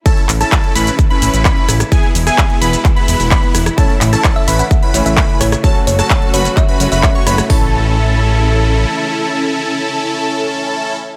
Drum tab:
HH |xxoxxxoxxxoxxxox|xxoxxxoxxxooxxox|xxoxxxoxxxoxxxox|xxoxxxoxxxooxxox|
SH |x-xxx-xxx-xxx-xx|x-xxx-xxx-xxx-xx|x-xxx-xxx-xxx-xx|x-xxx-xxx-xxx-xx|
CP |--x-x-------x---|----x---x---x---|--x-x-------x---|----x---x---x---|
SD |---r----------rr|---r----------rr|---r----------rr|---r----------rr|
BD |o---o---o---o---|o---o---o---o---|o---o---o---o---|o---o---o---o---|

HH |o---------------|----------------|
SH |----------------|----------------|
CP |----------------|----------------|
SD |----------------|----------------|
BD |o---------------|----------------|